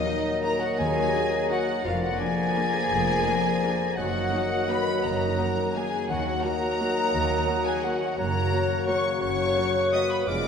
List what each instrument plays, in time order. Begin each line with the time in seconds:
Already playing: harp D#3 A#3 D#4 F#4 A#4, trombone section D#3 F#3, bassoon F#3, french horn section A#3 A#4, violin section D#4 D#5, flute D#5, clarinet D#5, oboe A#5
0.06 viola section D#4 F#4
0.16 harp A#4
0.25 harp F#5
0.34 harp D#6
0.42 viola section D#4 F#4, violin section A#4 A#5, flute A#5
0.52 harp A#4
0.60 violin section F#4 F#5, harp F#4, flute F#5
0.70 harp A#3
0.78 cello section D#2, double bass section D#2, harp D#3, violin section G#4 G#5, flute G#5
0.86 harp D#4
0.96 harp A#3
1.05 harp F#4
1.14 viola section D#4 F#4
1.23 harp A#4
1.32 harp F#5
1.50 viola section D#4 F#4, violin section F#4 F#5, harp F#5, flute F#5
1.59 harp A#4
1.68 harp F#4
1.77 harp A#3
1.84 double bass section F1, harp F2, cello section F2, trombone section D3 F3, bassoon F3, french horn section A#3 A#4, violin section F4 F5, clarinet D5, flute F5, oboe A#5
1.93 harp F3
2.02 violin section F#4 F#5, flute F#5
2.10 harp F4
2.19 viola section A#3 D4, violin section G#4 G#5, harp D5, flute G#5
2.29 harp A#4
2.38 harp F5
2.47 harp D6
2.56 viola section A#3 D4
2.66 harp A#4
2.75 harp F4
2.83 harp A#3
2.91 double bass section F1, cello section F2, harp F2
3.00 harp F3
3.09 harp A#3
3.17 harp F4
3.27 viola section A#3 D4, harp D5
3.36 harp A#4
3.54 harp D6
3.63 viola section A#3 D4, harp F5
3.72 harp A#4
3.81 harp F4
3.90 harp A#3
3.97 double bass section F#1, cello section F#2, harp F#2, trombone section D#3 F#3, bassoon F#3, french horn section A#3 F#4, violin section F#4 F#5, clarinet D#5, oboe F#5, flute F#5
4.06 harp F#3
4.15 harp A#3
4.24 harp D#4
4.32 viola section A#3 D#4, harp D#5
4.42 harp A#4
4.69 viola section A#3 D#4, violin section B4 B5, harp D#5, flute B5
4.78 harp A#4
4.87 harp D#4
4.95 harp A#3
5.04 double bass section F#1, cello section F#2, harp F#2, violin section A#4 A#5, flute A#5
5.13 harp F#3
5.21 harp A#3
5.30 harp D#4
5.39 viola section A#3 D#4, harp D#5
5.48 harp A#4
5.57 harp D#5
5.66 harp D#6
5.74 viola section A#3 D#4, violin section G#4 G#5, harp D#5, flute G#5
5.84 harp A#4
5.92 harp D#4
6.01 harp A#3
6.09 cello section D#2, double bass section D#2, harp D#3, trombone section D#3 F#3, bassoon F#3, french horn section A#3 F#4, violin section F#4 F#5, clarinet D#5, flute F#5, oboe F#5
6.17 harp D#4
6.26 harp A#3
6.34 harp F#4
6.43 viola section A#3 F#4, violin section A#4 A#5, flute A#5
6.53 harp A#4
6.62 harp F#5
6.71 harp D#6
6.80 viola section A#3 F#4, harp F#5
6.89 harp A#4
6.98 harp F#4
7.06 harp A#3
7.14 cello section D#2, double bass section D#2, harp D#3
7.22 harp D#4
7.31 harp A#3
7.48 viola section A#3 F#4
7.57 harp A#4
7.65 violin section G#4 G#5, harp F#5, flute G#5
7.75 harp D#6
7.83 viola section A#3 F#4, violin section F#4 F#5, flute F#5
7.93 harp A#4
8.02 harp F#4
8.10 harp A#3
8.17 double bass section F#1, cello section F#2, harp F#2, trombone section C#3 F#3, bassoon F#3, french horn section A#3 F#4, violin section A#4 A#5, clarinet C#5, oboe F#5, flute A#5
8.26 harp C#3
8.34 harp A#3
8.42 harp F#4
8.51 viola section A#3 F#4, harp C#5
8.60 harp A#4
8.69 harp F#5
8.78 harp C#6
8.87 bassoon F#3, viola section A#3 F#4, clarinet C#5, violin section C#5 C#6, harp F#5, oboe F#5, flute C#6
8.96 harp A#4
9.04 harp F#4
9.12 harp A#3
9.20 double bass section F#1, cello section F#2, harp F#2, bassoon F#3, clarinet C#5, violin section C#5 C#6, oboe F#5, flute C#6
9.29 harp C#3
9.37 harp A#3
9.46 harp F#4
9.56 viola section A#3 F#4, harp C#5
9.65 harp A#4
9.74 harp F#5
9.84 harp C#6
9.92 viola section A#3 F#4, clarinet B4, violin section D#5 D#6, flute D#6
10.02 harp A#4
10.10 harp F#4, violin section B4 B5, flute B5
10.20 harp A#3
10.27 double bass section F1, cello section F2, harp F2, trombone section F3 G#3, bassoon G#3, french horn section A#3 F4, clarinet A#4, violin section D5 D6, oboe F5, flute D6
10.36 harp F3